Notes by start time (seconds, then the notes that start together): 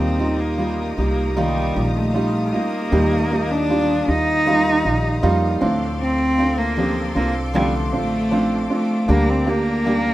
Already playing: D#2 A#2 D#3 G3 A#3 C4 D#4 F4 G4 F5 A#5 D#6
0.19 G3 A#3 D#4 F4
0.40 A#3
0.58 G3 A#3 D#4 F4
0.97 C2 G3 A#3 D#4 F4 G4
1.36 D#3 G3 A#3 D#4 F4
1.75 A#1 G3 D#4 F4
1.96 A3
2.14 G3 D#4 F4
2.53 G3 A#3 D#4 F4
2.91 D#2 A#2 D#3 G3 A#3 D#4 F4 G4
3.30 G3 A#3 D#4 F4 G4
3.51 D4
3.69 D#3 G3 A#3 F4
4.08 D#2 G3 D#4 F4
4.46 D#3 G3 A#3 D#4 F4
4.84 A#1 G3 D#4 F4
5.22 F2 G3 A#3 D#4 F4
5.61 D2 A2 D3 F3 A3 C4 D4 F4 A4 C6 D6
6.01 C4
6.38 A3 C4 D4 F4
6.58 A#3
6.77 F3 C4 D4 F4 G4
7.15 C2 A#3 C4 D4 F4
7.53 D3 F3 G3 A3 C4 D4 F4
7.93 A1 A3 C4 D4 F4
8.31 F3 A3 C4 D4 F4
8.70 A3 C4 D4 F4
9.07 D2 D3 G3 A#3 D4 G4 D5 A#5
9.29 C4
9.47 A#3 D4 G4
9.86 G3 A#3 D4 G4